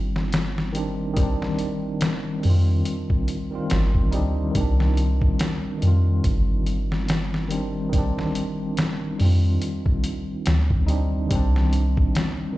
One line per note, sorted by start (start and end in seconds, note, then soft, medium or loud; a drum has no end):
0.00 2.41 G1 medium
0.00 0.68 D#3 medium
0.00 0.70 G3 medium
0.00 0.71 C4 medium
0.00 0.73 F4 medium
0.16 snare soft
0.32 snare loud
0.32 closed hi-hat medium
0.58 snare soft
0.73 1.12 D#3 medium
0.73 1.13 G3 medium
0.73 1.13 C4 medium
0.73 closed hi-hat medium
0.77 1.14 D4 medium
1.13 2.38 D#3 medium
1.13 2.39 G3 medium
1.13 kick loud
1.13 closed hi-hat medium
1.20 2.41 C4 medium
1.20 2.42 D4 medium
1.42 snare soft
1.59 closed hi-hat medium
2.01 snare loud
2.01 closed hi-hat medium
2.40 3.46 D#3 medium
2.40 3.48 G3 medium
2.40 open hi-hat medium
2.45 2.83 F2 loud
2.45 3.49 C4 medium
2.50 3.51 F4 medium
2.85 closed hi-hat medium
3.10 kick medium
3.28 closed hi-hat medium
3.51 3.72 D#3 medium
3.51 3.73 G3 medium
3.51 3.74 C4 medium
3.55 3.74 F4 medium
3.70 4.15 G1 medium
3.70 snare loud
3.70 closed hi-hat medium
3.94 kick medium
4.11 4.51 D2 medium
4.11 4.51 G3 medium
4.11 4.52 C4 medium
4.11 4.50 D#4 medium
4.11 closed hi-hat medium
4.16 4.52 D4 medium
4.51 5.76 D#3 medium
4.51 5.77 G3 medium
4.51 kick loud
4.51 closed hi-hat medium
4.56 5.36 C2 loud
4.56 5.79 C4 medium
4.60 5.80 D4 medium
4.80 snare soft
4.97 closed hi-hat medium
5.21 kick medium
5.39 snare loud
5.39 closed hi-hat medium
5.78 7.45 D#3 medium
5.78 7.46 G3 medium
5.82 6.20 F2 medium
5.82 7.48 C4 medium
5.82 closed hi-hat medium
5.87 7.49 F4 medium
6.24 9.17 G1 medium
6.24 kick loud
6.24 closed hi-hat medium
6.66 closed hi-hat medium
6.92 snare soft
7.08 snare loud
7.08 closed hi-hat medium
7.34 snare soft
7.49 7.88 D#3 medium
7.49 7.89 G3 medium
7.49 7.89 C4 medium
7.49 closed hi-hat medium
7.54 7.90 D4 medium
7.89 9.14 D#3 medium
7.89 9.15 G3 medium
7.89 kick loud
7.89 closed hi-hat medium
7.95 9.17 C4 medium
7.95 9.18 D4 medium
8.19 snare soft
8.35 closed hi-hat medium
8.77 snare loud
8.77 closed hi-hat medium
9.15 10.84 G3 medium
9.15 10.82 D#4 medium
9.20 9.58 F2 medium
9.20 10.86 C4 medium
9.20 open hi-hat medium
9.25 10.87 F4 medium
9.62 closed hi-hat medium
9.86 kick medium
10.04 closed hi-hat medium
10.46 11.28 D2 medium
10.46 snare loud
10.46 closed hi-hat medium
10.70 kick medium
10.87 11.26 G3 medium
10.87 11.27 C4 medium
10.87 11.26 D#4 medium
10.87 closed hi-hat medium
10.91 11.28 D4 medium
11.26 12.51 D#3 medium
11.26 12.53 G3 medium
11.31 12.12 C2 loud
11.31 12.54 C4 medium
11.31 kick loud
11.31 closed hi-hat medium
11.35 12.56 D4 medium
11.56 snare soft
11.73 closed hi-hat medium
11.97 kick loud
12.15 snare loud
12.15 closed hi-hat medium
12.52 12.58 D#3 medium